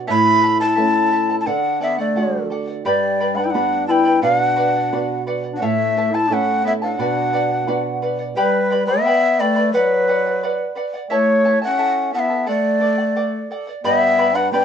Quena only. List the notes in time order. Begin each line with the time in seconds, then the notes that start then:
0.11 B5
0.61 A5
1.41 A5
1.46 F#5
1.83 E5
2.00 D5
2.85 D5
3.35 F#5
3.44 G5
3.50 F#5
3.87 G5 A5
4.23 F5
4.40 F#5
5.56 F#5
5.65 E5
6.15 A5
6.33 F#5
6.67 E5
6.83 F#5
8.36 B4
8.86 E5
9.40 D5
9.73 B4
11.12 C#5
11.64 F#5
12.15 F#5
12.19 E5
12.50 D5
13.85 E5
14.36 F#5
14.52 G5